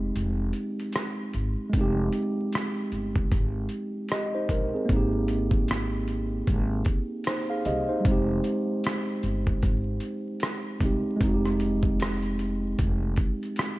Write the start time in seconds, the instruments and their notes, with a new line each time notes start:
Already playing: upright bass F1, tine electric piano G#3 C4 D#4 G4
0.16 upright bass F1, closed hi-hat
0.53 closed hi-hat
0.80 closed hi-hat
0.93 cross-stick, closed hi-hat
1.33 upright bass G#1, closed hi-hat
1.70 tine electric piano G#3 C4, kick, closed hi-hat
1.74 upright bass F1, tine electric piano D#4
1.81 tine electric piano G4
2.13 closed hi-hat
2.53 cross-stick, closed hi-hat
2.92 upright bass G1, closed hi-hat
3.16 kick
3.32 upright bass G#1, kick, closed hi-hat
3.69 closed hi-hat
4.09 tine electric piano G4 D#5, cross-stick, closed hi-hat
4.35 tine electric piano D#4 C5
4.49 upright bass A#1, tine electric piano A#4, kick, closed hi-hat
4.74 tine electric piano C4 G#4
4.85 tine electric piano A#3 C4, kick, closed hi-hat
4.89 upright bass G#1, tine electric piano D#4
4.96 tine electric piano G4
5.28 closed hi-hat
5.51 kick
5.68 cross-stick, closed hi-hat
6.08 closed hi-hat
6.47 upright bass G#1, kick, closed hi-hat
6.85 kick, closed hi-hat
7.24 tine electric piano D#4 C5, cross-stick, closed hi-hat
7.50 tine electric piano G#4 F5
7.65 upright bass C2, tine electric piano G4 D#5, closed hi-hat
7.89 tine electric piano D#4 C5
8.00 tine electric piano G3 C4
8.05 upright bass F1, tine electric piano G#3 D#4, kick, closed hi-hat
8.12 tine electric piano G4
8.44 closed hi-hat
8.84 cross-stick, closed hi-hat
9.23 upright bass G1, closed hi-hat
9.47 kick
9.63 upright bass G#1, kick, closed hi-hat
10.00 closed hi-hat
10.40 cross-stick, closed hi-hat
10.80 upright bass C2, tine electric piano G#3 C4 D#4, kick, closed hi-hat
10.85 tine electric piano G4
11.17 tine electric piano G#3 C4
11.21 upright bass F1, tine electric piano D#4, kick, closed hi-hat
11.28 tine electric piano F#4
11.34 tine electric piano G4
11.45 cross-stick
11.60 closed hi-hat
11.83 kick
12.00 cross-stick, closed hi-hat
12.23 closed hi-hat
12.39 closed hi-hat
12.79 upright bass F1, kick, closed hi-hat
13.16 kick, closed hi-hat
13.43 closed hi-hat
13.56 cross-stick, closed hi-hat